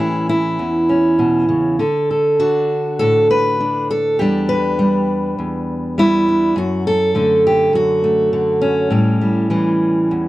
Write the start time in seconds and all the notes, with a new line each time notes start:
Already playing: A2 C#4
0.00 E3 E4
0.29 E4
0.59 E2
0.89 C#4
1.19 B2
1.49 C#3
1.79 D3 A4
2.11 A4
2.39 D4 F#4
2.99 A2 A4
3.31 B4
3.60 D4
3.91 A4
4.19 E2 G3 D4 G4
4.49 B4
4.79 G3
5.39 E2
5.98 G3 E4
6.28 D4
6.56 F#2 F#4
6.87 A4
7.15 D3 A3
7.47 G4
7.73 F#2 F#4
8.04 A3
8.33 D3
8.62 C#4
8.91 A2 G3
9.21 G3
9.50 E3 G3
10.11 E2